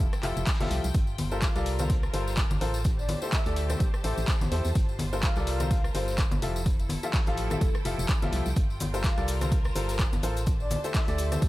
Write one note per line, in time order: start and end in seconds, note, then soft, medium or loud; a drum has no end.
0.00 0.95 E4 medium
0.00 0.95 A4 medium
0.00 1.71 G5 medium
0.13 cross-stick medium
0.13 closed hi-hat soft
0.13 tambourine soft
0.23 0.33 F1 medium
0.23 0.47 F3 medium
0.23 0.47 F4 medium
0.23 0.47 G4 medium
0.23 0.47 A4 medium
0.23 0.47 E5 medium
0.23 clap medium
0.23 open hi-hat loud
0.37 0.44 F1 medium
0.37 closed hi-hat soft
0.37 tambourine medium
0.47 kick loud
0.47 snare medium
0.47 clap loud
0.47 closed hi-hat medium
0.47 tambourine medium
0.53 snare medium
0.53 closed hi-hat medium
0.60 0.68 F1 medium
0.60 0.84 F3 loud
0.60 0.84 F4 medium
0.60 0.84 G4 medium
0.60 0.84 A4 medium
0.60 0.84 E5 loud
0.60 snare medium
0.60 closed hi-hat medium
0.60 tambourine soft
0.60 high conga medium
0.66 snare medium
0.66 closed hi-hat medium
0.70 0.80 C2 loud
0.70 snare medium
0.70 closed hi-hat medium
0.70 open hi-hat loud
0.84 0.91 C2 medium
0.84 closed hi-hat soft
0.84 tambourine medium
0.94 1.49 G1 loud
0.94 2.85 F4 medium
0.94 kick loud
0.94 closed hi-hat medium
0.94 tambourine medium
1.07 tambourine soft
1.18 7.29 C5 medium
1.18 closed hi-hat medium
1.18 open hi-hat loud
1.18 high conga medium
1.28 1.45 G3 medium
1.28 1.45 F4 medium
1.28 1.45 A4 medium
1.28 2.85 A#4 medium
1.28 1.45 A#4 medium
1.28 1.45 C5 medium
1.28 tambourine medium
1.42 1.63 F5 medium
1.42 kick loud
1.42 snare loud
1.42 clap loud
1.42 closed hi-hat medium
1.42 tambourine medium
1.55 2.09 C2 medium
1.55 1.76 G3 loud
1.55 1.76 F4 medium
1.55 1.76 A4 medium
1.55 1.76 A#4 medium
1.55 1.76 D5 loud
1.55 snare soft
1.55 closed hi-hat soft
1.55 tambourine soft
1.66 closed hi-hat medium
1.66 open hi-hat loud
1.79 1.93 G3 medium
1.79 1.93 F4 medium
1.79 1.93 A4 medium
1.79 1.93 A#4 medium
1.79 1.93 C5 medium
1.79 7.09 A5 medium
1.79 cross-stick medium
1.79 closed hi-hat medium
1.79 tambourine medium
1.79 high conga medium
1.89 kick loud
1.89 closed hi-hat medium
1.89 tambourine medium
2.03 cross-stick medium
2.03 tambourine soft
2.14 2.44 G1 medium
2.14 2.37 G3 medium
2.14 2.37 F4 medium
2.14 2.37 A4 medium
2.14 2.37 A#4 medium
2.14 2.37 C5 medium
2.14 closed hi-hat medium
2.14 open hi-hat loud
2.27 snare medium
2.27 tambourine medium
2.37 kick loud
2.37 snare loud
2.37 clap loud
2.37 closed hi-hat medium
2.37 tambourine medium
2.50 2.58 G1 medium
2.50 closed hi-hat medium
2.50 tambourine soft
2.50 high conga medium
2.61 3.16 A1 loud
2.61 2.77 F4 medium
2.61 2.77 A4 medium
2.61 2.77 A#4 medium
2.61 2.77 C5 medium
2.61 closed hi-hat medium
2.61 open hi-hat loud
2.74 closed hi-hat soft
2.74 tambourine medium
2.84 5.43 G4 medium
2.84 kick loud
2.84 closed hi-hat medium
2.84 tambourine medium
2.98 3.18 D5 medium
2.98 tambourine soft
3.09 closed hi-hat medium
3.09 open hi-hat loud
3.09 high conga medium
3.22 3.36 A3 medium
3.22 3.36 E4 medium
3.22 3.36 G4 medium
3.22 3.36 A4 medium
3.22 3.36 C5 loud
3.22 tambourine medium
3.33 3.70 E5 medium
3.33 kick loud
3.33 snare loud
3.33 clap loud
3.33 closed hi-hat medium
3.33 open hi-hat medium
3.33 tambourine medium
3.46 3.75 D2 medium
3.46 3.67 A3 medium
3.46 3.67 E4 medium
3.46 3.67 G4 medium
3.46 3.67 A4 medium
3.46 3.67 D5 loud
3.46 closed hi-hat soft
3.46 tambourine soft
3.56 closed hi-hat medium
3.56 open hi-hat loud
3.70 3.83 A3 medium
3.70 3.84 E4 medium
3.70 3.83 G4 medium
3.70 3.84 A4 medium
3.70 3.83 C5 medium
3.70 cross-stick medium
3.70 closed hi-hat medium
3.70 tambourine medium
3.70 high conga medium
3.80 3.90 A1 medium
3.80 kick loud
3.80 closed hi-hat medium
3.80 tambourine medium
3.94 cross-stick medium
3.94 tambourine soft
4.04 4.14 A1 medium
4.04 4.28 A3 medium
4.04 4.28 E4 medium
4.04 4.28 G4 medium
4.04 4.28 A4 medium
4.04 4.28 C5 medium
4.04 closed hi-hat medium
4.04 open hi-hat loud
4.18 4.25 A1 medium
4.18 closed hi-hat soft
4.18 tambourine medium
4.28 kick loud
4.28 snare loud
4.28 clap loud
4.28 closed hi-hat medium
4.28 tambourine medium
4.41 4.49 A1 medium
4.41 snare soft
4.41 closed hi-hat medium
4.41 tambourine soft
4.41 high conga medium
4.51 4.61 E2 loud
4.51 4.68 E4 medium
4.51 4.68 G4 medium
4.51 4.68 A4 medium
4.51 4.68 C5 medium
4.51 snare soft
4.51 closed hi-hat medium
4.51 open hi-hat loud
4.65 4.72 E2 medium
4.65 closed hi-hat soft
4.65 tambourine medium
4.75 5.30 G1 loud
4.75 6.42 F4 medium
4.75 kick loud
4.75 closed hi-hat medium
4.75 tambourine medium
4.89 tambourine soft
4.99 closed hi-hat medium
4.99 open hi-hat loud
4.99 high conga medium
5.11 5.26 G3 medium
5.11 5.26 F4 medium
5.11 5.26 A4 medium
5.11 6.42 A#4 medium
5.11 5.26 A#4 medium
5.11 5.26 C5 loud
5.11 tambourine medium
5.22 5.44 F5 medium
5.22 kick loud
5.22 snare loud
5.22 clap loud
5.22 closed hi-hat medium
5.22 tambourine medium
5.36 5.90 C2 medium
5.36 5.57 G3 loud
5.36 5.57 F4 medium
5.36 5.57 A4 medium
5.36 5.57 A#4 medium
5.36 5.57 D5 loud
5.36 snare soft
5.36 closed hi-hat soft
5.36 tambourine soft
5.47 5.84 F5 medium
5.47 closed hi-hat medium
5.47 open hi-hat loud
5.60 5.74 G3 medium
5.60 5.74 F4 medium
5.60 5.74 A4 medium
5.60 5.74 A#4 medium
5.60 5.74 C5 medium
5.60 cross-stick medium
5.60 closed hi-hat medium
5.60 tambourine medium
5.60 high conga medium
5.71 kick loud
5.71 closed hi-hat medium
5.71 tambourine medium
5.84 cross-stick medium
5.84 tambourine soft
5.95 6.25 G1 medium
5.95 6.18 G3 medium
5.95 6.18 F4 medium
5.95 6.18 A4 medium
5.95 6.18 A#4 medium
5.95 6.18 C5 medium
5.95 6.15 C5 medium
5.95 closed hi-hat medium
5.95 open hi-hat loud
6.08 snare soft
6.08 tambourine medium
6.18 kick loud
6.18 snare loud
6.18 clap loud
6.18 closed hi-hat medium
6.18 tambourine medium
6.31 6.39 G1 medium
6.31 closed hi-hat soft
6.31 tambourine soft
6.31 high conga loud
6.42 6.97 F1 loud
6.42 6.58 F3 medium
6.42 8.56 E4 medium
6.42 6.58 F4 medium
6.42 6.58 G4 medium
6.42 6.58 A4 medium
6.42 6.58 E5 medium
6.42 closed hi-hat medium
6.42 open hi-hat loud
6.56 closed hi-hat soft
6.56 tambourine medium
6.63 8.56 A4 medium
6.63 kick loud
6.63 closed hi-hat medium
6.63 tambourine medium
6.79 closed hi-hat soft
6.79 tambourine soft
6.89 closed hi-hat medium
6.89 open hi-hat loud
6.89 high conga medium
7.03 7.17 F3 medium
7.03 7.17 F4 medium
7.03 7.17 G4 medium
7.03 7.17 A4 medium
7.03 7.17 E5 loud
7.03 closed hi-hat soft
7.03 tambourine medium
7.13 kick loud
7.13 snare loud
7.13 clap loud
7.13 closed hi-hat medium
7.13 open hi-hat medium
7.13 tambourine medium
7.27 7.56 A1 medium
7.27 7.48 F3 loud
7.27 7.48 F4 medium
7.27 7.48 G4 medium
7.27 7.48 A4 medium
7.27 7.48 F5 loud
7.27 closed hi-hat soft
7.27 tambourine soft
7.37 7.75 A4 medium
7.37 9.33 G5 medium
7.37 closed hi-hat medium
7.37 open hi-hat loud
7.50 7.64 F3 medium
7.50 7.64 F4 medium
7.50 7.65 G4 medium
7.50 7.64 A4 medium
7.50 7.64 E5 medium
7.50 cross-stick medium
7.50 closed hi-hat soft
7.50 tambourine medium
7.50 high conga medium
7.61 7.71 F1 medium
7.61 kick loud
7.61 closed hi-hat medium
7.61 tambourine medium
7.75 cross-stick medium
7.75 tambourine soft
7.85 7.94 F1 medium
7.85 8.09 F3 medium
7.85 8.09 F4 medium
7.85 8.09 G4 medium
7.85 8.09 A4 medium
7.85 8.09 E5 medium
7.85 closed hi-hat medium
7.85 open hi-hat loud
7.98 8.06 F1 medium
7.98 closed hi-hat soft
7.98 tambourine medium
8.09 kick loud
8.09 snare loud
8.09 clap loud
8.09 closed hi-hat medium
8.09 tambourine medium
8.22 8.30 F1 medium
8.22 8.46 F3 loud
8.22 8.46 F4 medium
8.22 8.46 G4 medium
8.22 8.46 A4 medium
8.22 8.46 E5 loud
8.22 snare soft
8.22 closed hi-hat medium
8.22 tambourine soft
8.22 high conga medium
8.32 8.42 C2 loud
8.32 snare soft
8.32 closed hi-hat medium
8.32 open hi-hat loud
8.46 8.53 C2 medium
8.46 closed hi-hat soft
8.46 tambourine medium
8.56 9.11 G1 loud
8.56 10.47 F4 medium
8.56 kick loud
8.56 closed hi-hat medium
8.56 tambourine medium
8.56 shaker soft
8.70 tambourine soft
8.80 closed hi-hat medium
8.80 open hi-hat loud
8.80 high conga medium
8.80 shaker medium
8.90 9.07 G3 medium
8.90 9.07 F4 medium
8.90 9.07 A4 medium
8.90 10.47 A#4 loud
8.90 9.07 A#4 medium
8.90 11.48 C5 medium
8.90 9.07 C5 loud
8.94 tambourine medium
8.94 shaker soft
9.04 9.25 F5 medium
9.04 kick loud
9.04 snare loud
9.04 clap loud
9.04 closed hi-hat medium
9.04 tambourine medium
9.04 shaker soft
9.18 9.71 C2 medium
9.18 9.38 G3 medium
9.18 9.38 F4 medium
9.18 9.38 A4 medium
9.18 9.38 A#4 medium
9.18 9.38 D5 loud
9.18 snare soft
9.18 closed hi-hat soft
9.18 tambourine soft
9.28 closed hi-hat medium
9.28 open hi-hat loud
9.28 shaker medium
9.41 9.55 G3 medium
9.41 9.55 F4 medium
9.41 9.55 A4 medium
9.41 9.55 A#4 medium
9.41 9.55 C5 medium
9.41 11.48 A5 medium
9.41 cross-stick medium
9.41 closed hi-hat soft
9.41 tambourine medium
9.41 high conga medium
9.41 shaker soft
9.51 kick loud
9.51 closed hi-hat medium
9.51 tambourine medium
9.51 shaker soft
9.64 cross-stick medium
9.64 tambourine soft
9.75 10.06 G1 medium
9.75 9.99 G3 medium
9.75 9.99 F4 medium
9.75 9.99 A4 medium
9.75 9.99 A#4 medium
9.75 9.99 C5 medium
9.75 closed hi-hat medium
9.75 open hi-hat loud
9.75 shaker medium
9.89 snare medium
9.89 tambourine medium
9.89 shaker soft
9.99 kick loud
9.99 snare loud
9.99 clap loud
9.99 closed hi-hat medium
9.99 shaker soft
10.13 10.20 G1 medium
10.13 closed hi-hat medium
10.13 tambourine soft
10.13 high conga medium
10.23 10.78 A1 loud
10.23 10.39 F4 medium
10.23 10.39 A4 medium
10.23 10.39 A#4 medium
10.23 10.39 C5 loud
10.23 closed hi-hat medium
10.23 open hi-hat loud
10.23 shaker medium
10.37 closed hi-hat soft
10.37 tambourine medium
10.37 shaker soft
10.46 11.48 G4 medium
10.46 kick loud
10.46 closed hi-hat medium
10.46 tambourine medium
10.46 shaker soft
10.60 10.80 D5 medium
10.60 tambourine soft
10.71 closed hi-hat medium
10.71 open hi-hat medium
10.71 high conga medium
10.71 shaker medium
10.84 10.98 A3 medium
10.84 10.98 E4 medium
10.84 10.98 G4 medium
10.84 10.98 A4 medium
10.84 10.98 C5 loud
10.84 tambourine medium
10.84 shaker soft
10.94 11.32 E5 medium
10.94 kick loud
10.94 snare loud
10.94 clap loud
10.94 closed hi-hat medium
10.94 open hi-hat medium
10.94 tambourine medium
10.94 shaker soft
11.08 11.37 D2 medium
11.08 11.29 A3 loud
11.08 11.29 E4 medium
11.08 11.29 G4 medium
11.08 11.29 A4 medium
11.08 11.29 D5 loud
11.08 closed hi-hat soft
11.08 tambourine soft
11.18 closed hi-hat medium
11.18 open hi-hat loud
11.18 shaker medium
11.32 11.45 A3 medium
11.32 11.45 E4 medium
11.32 11.45 G4 medium
11.32 11.45 A4 medium
11.32 11.45 C5 medium
11.32 cross-stick medium
11.32 closed hi-hat medium
11.32 tambourine medium
11.32 high conga medium
11.32 shaker soft
11.42 11.48 A1 medium
11.42 kick loud
11.42 closed hi-hat medium
11.42 tambourine medium
11.42 shaker soft